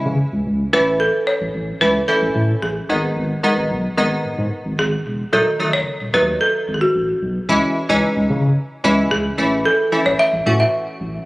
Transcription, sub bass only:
0, 0, Header, 1, 2, 480
1, 0, Start_track
1, 0, Key_signature, 4, "minor"
1, 0, Tempo, 540541
1, 892, Time_signature, 4, 2, 24, 8
1, 9994, End_track
2, 0, Start_track
2, 0, Title_t, "Sub bass"
2, 0, Program_c, 0, 38
2, 51, Note_on_c, 0, 49, 89
2, 129, Note_off_c, 0, 49, 0
2, 290, Note_on_c, 0, 37, 90
2, 368, Note_off_c, 0, 37, 0
2, 410, Note_on_c, 0, 37, 91
2, 566, Note_off_c, 0, 37, 0
2, 650, Note_on_c, 0, 33, 94
2, 962, Note_off_c, 0, 33, 0
2, 1250, Note_on_c, 0, 33, 101
2, 1329, Note_off_c, 0, 33, 0
2, 1370, Note_on_c, 0, 33, 98
2, 1526, Note_off_c, 0, 33, 0
2, 1610, Note_on_c, 0, 37, 83
2, 1766, Note_off_c, 0, 37, 0
2, 1969, Note_on_c, 0, 33, 101
2, 2048, Note_off_c, 0, 33, 0
2, 2090, Note_on_c, 0, 45, 105
2, 2246, Note_off_c, 0, 45, 0
2, 2329, Note_on_c, 0, 33, 96
2, 2485, Note_off_c, 0, 33, 0
2, 2569, Note_on_c, 0, 32, 105
2, 2725, Note_off_c, 0, 32, 0
2, 2809, Note_on_c, 0, 32, 107
2, 2965, Note_off_c, 0, 32, 0
2, 3169, Note_on_c, 0, 32, 98
2, 3248, Note_off_c, 0, 32, 0
2, 3290, Note_on_c, 0, 35, 96
2, 3446, Note_off_c, 0, 35, 0
2, 3530, Note_on_c, 0, 32, 97
2, 3686, Note_off_c, 0, 32, 0
2, 3771, Note_on_c, 0, 44, 48
2, 3819, Note_off_c, 0, 44, 0
2, 3892, Note_on_c, 0, 44, 97
2, 3969, Note_off_c, 0, 44, 0
2, 4130, Note_on_c, 0, 32, 89
2, 4208, Note_off_c, 0, 32, 0
2, 4250, Note_on_c, 0, 32, 102
2, 4406, Note_off_c, 0, 32, 0
2, 4491, Note_on_c, 0, 28, 91
2, 4647, Note_off_c, 0, 28, 0
2, 4731, Note_on_c, 0, 27, 107
2, 4809, Note_off_c, 0, 27, 0
2, 5091, Note_on_c, 0, 30, 97
2, 5169, Note_off_c, 0, 30, 0
2, 5331, Note_on_c, 0, 27, 93
2, 5409, Note_off_c, 0, 27, 0
2, 5451, Note_on_c, 0, 39, 96
2, 5607, Note_off_c, 0, 39, 0
2, 5931, Note_on_c, 0, 32, 91
2, 6087, Note_off_c, 0, 32, 0
2, 6171, Note_on_c, 0, 33, 100
2, 6327, Note_off_c, 0, 33, 0
2, 6410, Note_on_c, 0, 35, 89
2, 6566, Note_off_c, 0, 35, 0
2, 6650, Note_on_c, 0, 37, 111
2, 6728, Note_off_c, 0, 37, 0
2, 7011, Note_on_c, 0, 37, 98
2, 7089, Note_off_c, 0, 37, 0
2, 7251, Note_on_c, 0, 37, 97
2, 7329, Note_off_c, 0, 37, 0
2, 7371, Note_on_c, 0, 49, 97
2, 7526, Note_off_c, 0, 49, 0
2, 7851, Note_on_c, 0, 37, 97
2, 8007, Note_off_c, 0, 37, 0
2, 8090, Note_on_c, 0, 37, 104
2, 8246, Note_off_c, 0, 37, 0
2, 8331, Note_on_c, 0, 33, 93
2, 8565, Note_off_c, 0, 33, 0
2, 8932, Note_on_c, 0, 33, 86
2, 9009, Note_off_c, 0, 33, 0
2, 9171, Note_on_c, 0, 33, 102
2, 9249, Note_off_c, 0, 33, 0
2, 9291, Note_on_c, 0, 45, 98
2, 9447, Note_off_c, 0, 45, 0
2, 9771, Note_on_c, 0, 33, 95
2, 9927, Note_off_c, 0, 33, 0
2, 9994, End_track
0, 0, End_of_file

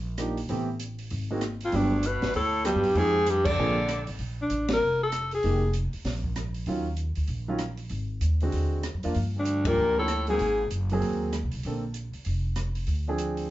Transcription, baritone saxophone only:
0, 0, Header, 1, 2, 480
1, 0, Start_track
1, 0, Tempo, 309598
1, 769, Time_signature, 4, 2, 24, 8
1, 20933, End_track
2, 0, Start_track
2, 0, Title_t, "Baritone saxophone"
2, 0, Program_c, 0, 67
2, 2549, Note_on_c, 0, 41, 65
2, 2709, Note_on_c, 0, 38, 77
2, 2732, Note_off_c, 0, 41, 0
2, 3198, Note_on_c, 0, 47, 71
2, 3222, Note_off_c, 0, 38, 0
2, 3631, Note_off_c, 0, 47, 0
2, 3641, Note_on_c, 0, 45, 83
2, 4085, Note_off_c, 0, 45, 0
2, 4120, Note_on_c, 0, 43, 77
2, 4590, Note_on_c, 0, 44, 90
2, 4613, Note_off_c, 0, 43, 0
2, 5093, Note_on_c, 0, 43, 76
2, 5116, Note_off_c, 0, 44, 0
2, 5399, Note_on_c, 0, 50, 94
2, 5422, Note_off_c, 0, 43, 0
2, 6342, Note_off_c, 0, 50, 0
2, 14524, Note_on_c, 0, 38, 81
2, 14974, Note_on_c, 0, 46, 98
2, 14997, Note_off_c, 0, 38, 0
2, 15450, Note_off_c, 0, 46, 0
2, 15459, Note_on_c, 0, 45, 78
2, 15903, Note_off_c, 0, 45, 0
2, 15941, Note_on_c, 0, 44, 76
2, 16555, Note_off_c, 0, 44, 0
2, 20933, End_track
0, 0, End_of_file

